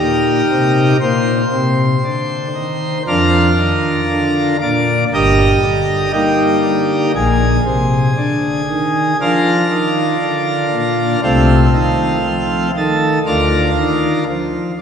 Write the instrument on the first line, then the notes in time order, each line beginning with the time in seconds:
pipe organ
Already playing: D#4 G4 A#4
0.00 A#2
0.51 C3
1.01 A#2 C5
1.53 C3
2.04 D3
2.55 D#3
3.07 F2 F3 D4 F4 A#4
3.58 D#3
4.10 D3
4.61 A#2 D5
5.14 G1 G2 G4 A#4 D#5
5.63 D3
6.13 G3 A#3 D#4 G4
6.64 D3
7.15 A#1 A#2 G#4
7.66 C3
8.17 D3
8.69 D#3
9.21 F3 D4 F4 A#4
9.71 D#3
10.22 D3
10.72 A#2
11.23 C2 C3 A3 C4 F4
11.73 D#3
12.26 F3
12.77 D#3 A4
13.26 D2 D3 D4 F4 A#4
13.78 D#3
14.29 F3